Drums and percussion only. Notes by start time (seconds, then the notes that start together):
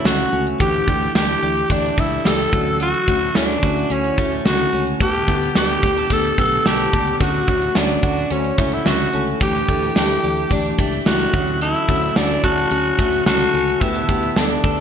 0.05 snare
0.19 closed hi-hat
0.33 closed hi-hat
0.47 closed hi-hat
0.60 kick, closed hi-hat
0.74 closed hi-hat
0.88 kick, closed hi-hat
1.02 closed hi-hat
1.15 snare
1.29 closed hi-hat
1.43 closed hi-hat
1.56 closed hi-hat
1.70 kick, closed hi-hat
1.84 closed hi-hat
1.97 kick, closed hi-hat
2.11 closed hi-hat
2.25 snare
2.39 closed hi-hat
2.53 kick, closed hi-hat
2.67 closed hi-hat
2.80 closed hi-hat
2.94 closed hi-hat
3.08 kick, closed hi-hat
3.22 closed hi-hat
3.35 snare
3.49 closed hi-hat
3.63 kick, closed hi-hat
3.77 closed hi-hat
3.90 closed hi-hat
4.04 closed hi-hat
4.18 kick, closed hi-hat
4.32 closed hi-hat
4.46 snare
4.59 closed hi-hat
4.73 closed hi-hat
4.87 closed hi-hat
5.00 kick, closed hi-hat
5.14 closed hi-hat
5.28 kick, closed hi-hat
5.42 closed hi-hat
5.55 snare
5.69 closed hi-hat
5.83 kick, closed hi-hat
5.97 closed hi-hat
6.10 kick, closed hi-hat
6.24 closed hi-hat
6.38 kick, closed hi-hat
6.52 closed hi-hat
6.66 snare
6.79 closed hi-hat
6.93 kick, closed hi-hat
7.07 closed hi-hat
7.20 kick, closed hi-hat
7.34 closed hi-hat
7.48 kick, closed hi-hat
7.62 closed hi-hat
7.75 snare
7.89 closed hi-hat
8.03 kick, closed hi-hat
8.17 closed hi-hat
8.30 closed hi-hat
8.44 closed hi-hat
8.58 kick, closed hi-hat
8.72 closed hi-hat
8.86 snare
9.00 closed hi-hat
9.13 closed hi-hat
9.27 closed hi-hat
9.41 kick, closed hi-hat
9.55 closed hi-hat
9.69 kick, closed hi-hat
9.82 closed hi-hat
9.96 snare
10.10 closed hi-hat
10.24 closed hi-hat
10.37 closed hi-hat
10.51 kick, closed hi-hat
10.65 closed hi-hat
10.78 kick, closed hi-hat
10.93 closed hi-hat
11.06 snare
11.20 closed hi-hat
11.34 kick, closed hi-hat
11.48 closed hi-hat
11.61 closed hi-hat
11.75 closed hi-hat
11.89 kick, closed hi-hat
12.02 closed hi-hat
12.16 snare
12.30 closed hi-hat
12.44 kick, closed hi-hat
12.57 closed hi-hat
12.71 closed hi-hat
12.85 closed hi-hat
12.98 kick, closed hi-hat
13.13 closed hi-hat
13.26 snare
13.40 closed hi-hat
13.54 closed hi-hat
13.68 closed hi-hat
13.81 kick, closed hi-hat
13.95 closed hi-hat
14.09 kick, closed hi-hat
14.23 closed hi-hat
14.36 snare
14.50 closed hi-hat
14.64 kick, closed hi-hat